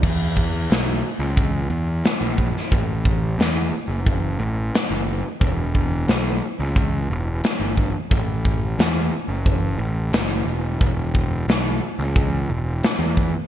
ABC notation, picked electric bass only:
X:1
M:4/4
L:1/16
Q:1/4=89
K:Edor
V:1 name="Picked electric bass" clef=bass
E,,4 B,,,2 z C,,3 E,,2 z ^A,,,2 z | A,,,4 E,,2 z F,,,3 A,,,2 z F,,,2 z | E,,,4 B,,,2 z C,,3 E,,,2 z G,,,2 z | A,,,4 E,,2 z F,,,3 A,,,2 F,,,2 E,,,2 |
E,,,4 B,,,2 z C,,3 E,,,2 z E,,2 z |]